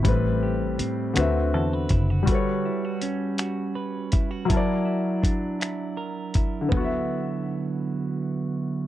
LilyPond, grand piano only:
\new Staff \with { instrumentName = "Grand piano" } { \time 6/8 \key d \major \tempo 4. = 54 <a, g c' b'>4. <d c' fis' b' e''>4. | <g fis' a' b' cis''>2. | <fis e' ais' d'' a''>2. | <d b fis' e''>2. | }